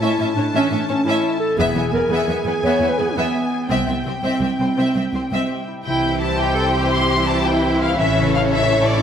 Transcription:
Already playing: harp A2 E4 A4 C#5, violin section A5
0.01 cello section A2, viola section C#4, clarinet E4, violin section E5, harp E5
0.18 cello section A2, viola section C#4, harp A4, violin section E5
0.36 cello section A2, viola section C#4, clarinet D4, harp E4, violin section C#5
0.54 cello section A2, harp E3, viola section C#4, violin section E5
0.71 cello section A2, harp C#4, viola section C#4, violin section E5
0.88 cello section A2, clarinet C#4, viola section C#4, harp A4, violin section C#5
1.05 cello section A2, viola section C#4, clarinet E4, harp E5
1.09 violin section E5
1.24 harp A4
1.40 harp E4, clarinet A4
1.58 double bass section E1, cello section E2, harp E3, viola section B3, clarinet G#4, violin section E5 G#5
1.75 cello section E2, viola section B3, harp E4, violin section E5
1.92 cello section E2, viola section B3, clarinet A#4, harp B4, violin section B4
2.09 cello section E2, viola section B3, clarinet G#4, violin section E5, harp G#5
2.28 cello section E2, viola section B3, harp B4, violin section E5
2.45 cello section E2, viola section B3, harp G#4, violin section B4
2.63 cello section E2, harp B3, viola section B3, clarinet C#5, violin section E5
2.80 cello section E2, viola section B3, harp E4, violin section E5
2.90 clarinet B4
2.98 cello section E2, viola section B3, clarinet G#4, violin section B4, harp B4
3.15 cello section E2, clarinet B3, viola section B3, violin section E5, harp G#5
3.36 harp B4
3.53 harp G#4
3.69 cello section C2, double bass section C2, harp C3, clarinet B3, viola section C4, violin section E5 G5
3.87 cello section C2, viola section C4, harp C4, violin section E5
4.05 cello section C2, viola section C4, harp G4, violin section C5
4.23 cello section C2, clarinet C4, viola section C4, harp E5, violin section E5
4.40 cello section C2, viola section C4, harp G4, violin section E5
4.59 cello section C2, viola section C4, harp E4, violin section C5
4.77 cello section C2, harp G3, viola section C4, violin section E5
4.95 cello section C2, viola section C4, harp C4, violin section E5
5.13 cello section C2, viola section C4, harp G4, violin section C5
5.31 cello section C2, viola section C4, harp E5, violin section E5
5.50 harp G4
5.68 harp E4
5.84 double bass section C2, harp C3, viola section E3 E4, french horn section C4 E4, cello section E4, violin section G4 C5 G5
6.04 harp C4
6.20 harp G4, violin section A5
6.39 cello section G4, harp E5, violin section G5
6.57 harp G4, cello section A4
6.76 harp E4, cello section G4
6.92 harp G3, violin section C6
7.11 harp C4
7.27 harp G4, violin section A5
7.46 cello section E4, harp E5, violin section G5
7.64 harp G4
7.82 harp E4, violin section F5
7.98 double bass section A1, harp A2, french horn section C#3, cello section C#4, violin section A4 C#5 E5
8.18 harp C#3
8.35 harp A4, violin section F5
8.53 violin section E5, harp E5
8.70 harp A4
8.86 harp E4, violin section D5

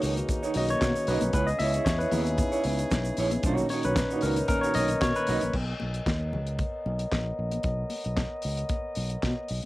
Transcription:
Already playing: tine electric piano D#3 A#3 C#4 F#4 G#4 A#4 B4, brass ensemble A#3 C#4 D#4
0.02 fingered electric bass C#2, clean electric guitar A#3 D#4 F#4 C#5, open hi-hat, shaker
0.17 muted clean electric guitar stroke, closed hi-hat, shaker
0.28 muted clean electric guitar stroke, kick, closed hi-hat, muted conga, shaker
0.43 clean electric guitar A#3 D#4 F#4 C#5, shaker
0.54 fingered electric bass B1, tine electric piano D#3 A#3 C#4 D#5, clean electric guitar A#3 D#4 F#4 C#5, open hi-hat, muted conga
0.69 tine electric piano C#5, muted clean electric guitar stroke, closed hi-hat, shaker
0.81 fingered electric bass B2, kick, snare, clap, closed hi-hat, high conga, shaker
0.96 muted clean electric guitar stroke, shaker
1.07 fingered electric bass B1, clean electric guitar A#3 D#4 F#4 D#5, tine electric piano B4, open hi-hat, shaker
1.21 fingered electric bass B1, muted clean electric guitar stroke, closed hi-hat, high conga, shaker
1.32 fingered electric bass C#2, brass ensemble C#3 G#4, clean electric guitar B3 E4 G#4 C#5, tine electric piano B4, kick, closed hi-hat, shaker
1.47 tine electric piano D#5, muted clean electric guitar stroke, shaker
1.59 fingered electric bass C#2, clean electric guitar B3 E4 G#4 C#5, tine electric piano E5, open hi-hat, muted conga
1.73 clean electric guitar B3 E4 G#4 C#5, closed hi-hat, shaker
1.85 fingered electric bass E2, tine electric piano C#5, muted clean electric guitar stroke, kick, snare, clap, closed hi-hat, high conga, shaker
1.99 clean electric guitar B3 E4 G#4 C#5, tine electric piano B4, shaker
2.11 fingered electric bass D#2, tine electric piano B3 D#4 E4, clean electric guitar B3 E4 G#4 C#5, open hi-hat, low conga, shaker
2.26 muted clean electric guitar stroke, closed hi-hat, shaker
2.38 muted clean electric guitar stroke, kick, closed hi-hat, muted conga, shaker
2.52 clean electric guitar B3 E4 G#4 C#5, shaker
2.64 fingered electric bass C#2, clean electric guitar B3 E4 G#4 C#5, open hi-hat, muted conga
2.79 muted clean electric guitar stroke, closed hi-hat, shaker
2.91 fingered electric bass B1, muted clean electric guitar stroke, kick, snare, clap, closed hi-hat, high conga, shaker
3.05 muted clean electric guitar stroke, shaker
3.17 fingered electric bass A#1, clean electric guitar B3 E4 G#4 C#5, open hi-hat, shaker
3.31 muted clean electric guitar stroke, closed hi-hat, high conga, shaker
3.43 fingered electric bass B1, tine electric piano A#2 D#3 C#4, brass ensemble A#2 D#4, clean electric guitar A#3 D#4 F#4 C#5, kick, closed hi-hat, muted conga, shaker
3.57 shaker
3.69 clean electric guitar A#3 D#4 F#4 C#5, tine electric piano C#5, open hi-hat, muted conga, shaker
3.83 fingered electric bass B1, clean electric guitar F#4 C#5, tine electric piano B4, closed hi-hat, shaker
3.87 clean electric guitar A#3 D#4
3.96 kick, snare, clap, closed hi-hat, high conga, shaker
4.11 clean electric guitar A#3 D#4 F#4 C#5, shaker
4.21 fingered electric bass C#2, clean electric guitar A#3 D#4, tine electric piano A#4, open hi-hat, shaker
4.25 clean electric guitar F#4 C#5
4.36 muted clean electric guitar stroke, closed hi-hat, shaker
4.48 tine electric piano D#3 A#3 C#4 A#4, muted clean electric guitar stroke, kick, closed hi-hat, muted conga, shaker
4.61 clean electric guitar A#3 D#4 F#4 C#5, tine electric piano C#5, shaker
4.74 fingered electric bass B1, clean electric guitar A#3 D#4 F#4 C#5, tine electric piano D#5, open hi-hat, muted conga, shaker
4.88 muted clean electric guitar stroke, closed hi-hat, shaker
5.01 fingered electric bass B2, tine electric piano C#5, kick, snare, clap, closed hi-hat, high conga, shaker
5.16 tine electric piano B4, muted clean electric guitar stroke, shaker
5.27 fingered electric bass B1, clean electric guitar A#3 D#4 F#4 D#5, open hi-hat, shaker
5.41 fingered electric bass A#1, muted clean electric guitar stroke, closed hi-hat, high conga, shaker
5.53 fingered electric bass B1, brass ensemble B3 A#4 C#5 D#5, kick, crash
5.80 fingered electric bass B1, muted conga
5.94 closed hi-hat
6.06 fingered electric bass D#2, kick, snare, clap, closed hi-hat, high conga
6.33 fingered electric bass C#2, low conga
6.47 closed hi-hat
6.59 kick, closed hi-hat, muted conga
6.86 fingered electric bass B1, muted conga
6.99 closed hi-hat
7.12 fingered electric bass A#1, kick, snare, clap, closed hi-hat, high conga
7.39 fingered electric bass A#1
7.51 closed hi-hat, high conga
7.63 fingered electric bass B1, kick, closed hi-hat
7.90 open hi-hat, muted conga
8.04 fingered electric bass B1, closed hi-hat
8.17 kick, snare, clap, closed hi-hat, high conga
8.42 fingered electric bass C#2, open hi-hat
8.57 closed hi-hat
8.69 kick, closed hi-hat, muted conga
8.95 fingered electric bass B1, open hi-hat, muted conga
9.10 closed hi-hat
9.22 fingered electric bass B2, kick, snare, clap, closed hi-hat, high conga
9.48 fingered electric bass B1, open hi-hat
9.62 closed hi-hat

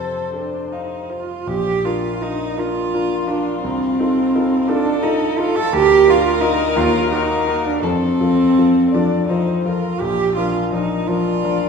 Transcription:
Already playing: grand piano F2 C3 C4, cello A4, violin C5
0.34 cello D4, grand piano A4
0.72 cello D#4, grand piano F5
1.10 cello F4, grand piano C5
1.47 grand piano A#1, cello G4
1.85 grand piano D4 F4 A#4, cello F4
2.21 grand piano D4 F4 A#4, cello D#4
2.56 grand piano D4 F4 A#4, violin F4, cello F4
2.94 grand piano D4 F4 A#4
3.27 cello D4, grand piano D4 F4 A#4
3.62 grand piano C2, cello C4
3.99 grand piano D#4 F4 A4
4.35 grand piano D#4 F4 A4
4.68 cello D4, grand piano D#4 F4 A4, violin A4
5.02 cello D#4, grand piano D#4 F4 A4
5.38 grand piano D#4 F4 A4, cello F4
5.56 cello A4
5.70 grand piano D2, cello G4, violin A#4
6.07 grand piano D4 F4 A#4, cello F4
6.41 grand piano D4 F4 A#4, cello D#4
6.76 grand piano D#2, cello F4
7.11 grand piano A#3 F#4 A#4, cello D#4
7.48 grand piano A#3 F#4 A#4
7.65 cello D4
7.82 grand piano F2, cello C4, violin A4
8.20 grand piano F3 F4 A4
8.58 grand piano F3 F4 A4
8.90 violin D5
8.94 grand piano F3 F4 A4, cello D4
9.28 grand piano F3 F4 A4, cello D#4, violin C5
9.65 grand piano F3 F4 A4, cello F4, violin A#4
10.00 grand piano A#1, cello G4
10.36 grand piano F3 D4 A#4, cello F4
10.72 grand piano F3 D4 A#4, cello D#4
11.07 grand piano F3 D4 A#4, cello F4, violin D5
11.44 grand piano F3 D4 A#4

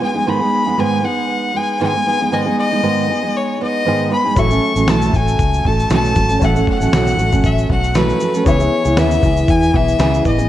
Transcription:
0.00 steel-string acoustic guitar G#3 B3 D#4 G#4, violin G#5
0.14 steel-string acoustic guitar G#3 B3 D#4 G#4
0.26 steel-string acoustic guitar G#2 D#3 G#3 B3 D#4 G#4, violin B5
0.40 steel-string acoustic guitar G#3 B3 D#4 G#4
0.66 steel-string acoustic guitar G#3 B3 D#4 G#4
0.77 steel-string acoustic guitar G#2 D#3 G#3 B3 D#4 G#4, violin G#5
1.02 steel-string acoustic guitar G#3 B3 D#4 G#4, violin F#5
1.54 steel-string acoustic guitar G#3 B3 D#4 G#4, violin G#5
1.80 steel-string acoustic guitar G#2 D#3 G#3 B3 D#4 G#4, violin G#5
1.94 steel-string acoustic guitar G#3 B3 D#4 G#4
2.05 steel-string acoustic guitar G#3 B3 D#4 G#4
2.20 steel-string acoustic guitar G#3 B3 D#4 G#4
2.31 steel-string acoustic guitar G#2 D#3 G#3 B3 D#4 G#4, violin D#5
2.46 steel-string acoustic guitar G#3 B3 D#4 G#4
2.59 violin D#5
2.71 steel-string acoustic guitar G#3 B3 D#4 G#4
2.82 steel-string acoustic guitar G#2 D#3 G#3 B3 D#4 G#4
3.08 steel-string acoustic guitar G#3 B3 D#4 G#4
3.23 steel-string acoustic guitar G#3 B3 D#4 G#4
3.37 violin C#5
3.60 steel-string acoustic guitar G#3 B3 D#4 G#4, violin D#5
3.85 steel-string acoustic guitar G#2 D#3 G#3 B3 D#4 G#4
4.10 steel-string acoustic guitar G#3 B3 D#4 G#4, violin B5
4.25 steel-string acoustic guitar G#3 B3 D#4 G#4
4.35 fingered electric bass A1, steel-string acoustic guitar A2 E3 F#3 A3 C#4 A4, grand piano C#4 F#4 A4 E5, violin C#6, kick, shaker
4.50 steel-string acoustic guitar F#3 A3 C#4 A4, shaker
4.75 fingered electric bass A1, steel-string acoustic guitar F#3 A3 C#4 A4, shaker
4.87 fingered electric bass B1, steel-string acoustic guitar A2 E3 F#3 A3 C#4 A4, violin A5, snare, shaker
5.02 shaker
5.13 fingered electric bass A1, steel-string acoustic guitar F#3 A3 C#4 A4, violin G#5, kick, shaker
5.28 shaker
5.39 fingered electric bass C#2, kick, shaker
5.54 shaker
5.65 fingered electric bass A1, steel-string acoustic guitar F#3 A3 C#4 A4, violin A5, kick
5.79 shaker
5.90 fingered electric bass B1, steel-string acoustic guitar A2 E3 F#3 A3 C#4 A4, violin A5, snare, shaker
6.05 shaker
6.15 fingered electric bass G#1, steel-string acoustic guitar F#3 A3 C#4 A4, kick, shaker
6.29 steel-string acoustic guitar F#3 A3 C#4 A4, shaker
6.39 fingered electric bass A1, steel-string acoustic guitar A2 E3 F#3 A3 C#4 A4, grand piano C#4 F#4 A4, kick, shaker
6.44 grand piano E5, violin F#5
6.55 steel-string acoustic guitar F#3 A3 C#4 A4, shaker
6.67 violin F#5, kick
6.81 fingered electric bass A1, steel-string acoustic guitar F#3 A3 C#4 A4, shaker
6.92 fingered electric bass B1, steel-string acoustic guitar A2 E3 F#3 A3 C#4 A4, snare, shaker
7.07 shaker
7.17 fingered electric bass A1, steel-string acoustic guitar F#3 A3 C#4 A4, shaker
7.32 steel-string acoustic guitar F#3 A3 C#4 A4, kick, shaker
7.44 fingered electric bass A1, violin E5, kick, shaker
7.58 shaker
7.69 fingered electric bass B1, steel-string acoustic guitar F#3 A3 C#4 A4, violin F#5, kick
7.84 shaker
7.95 steel-string acoustic guitar A2 E3 F#3 A3 C#4 A4, violin B4, snare, shaker
8.10 shaker
8.20 steel-string acoustic guitar F#3 A3 C#4 A4, shaker
8.34 steel-string acoustic guitar F#3 A3 C#4 A4, shaker
8.44 fingered electric bass C#2, steel-string acoustic guitar C#3 E3 B3 E4 G#4, grand piano C#4 G#4 B4, violin C#5, kick, shaker
8.48 grand piano E5
8.59 steel-string acoustic guitar B3 E4 G#4, shaker
8.85 fingered electric bass C#2, steel-string acoustic guitar B3 E4 G#4, shaker
8.97 fingered electric bass D#2, steel-string acoustic guitar C#3 E3 B3 E4 G#4, violin E5, snare, shaker
9.11 shaker
9.22 fingered electric bass C#2, steel-string acoustic guitar E3 B3 E4 G#4, kick, shaker
9.37 shaker
9.48 fingered electric bass E2, violin G#5, kick, shaker
9.63 shaker
9.73 fingered electric bass B1, steel-string acoustic guitar E3 B3 E4 G#4, violin E5, kick
9.88 shaker
9.99 fingered electric bass C#2, steel-string acoustic guitar C#3 E3 B3 E4 G#4, snare, shaker
10.14 shaker
10.24 fingered electric bass A1, steel-string acoustic guitar E3 B3 E4 G#4, violin D#5, kick, shaker
10.38 steel-string acoustic guitar B3 E4 G#4, shaker

